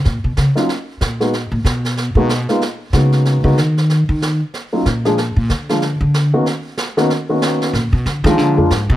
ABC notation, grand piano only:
X:1
M:4/4
L:1/8
Q:"Swing" 1/4=187
K:Ebm
V:1 name="Grand piano"
z3 [G,B,DEF] z3 [A,B,CEG] | z4 z [A,B,CEG] z [A,B,CEF] | z2 [A,B,CEG]3 [A,B,CEG] z2 | z4 z [G,B,DEF] z [F,A,B,=DA] |
z3 [F,A,B,=DF] z3 [E,B,C_DG] | z3 [^D,^A,=B,_D^F] z [^D,A,B,_DF]3 | z3 [F,A,B,=DF]2 [F,A,B,DF] z2 |]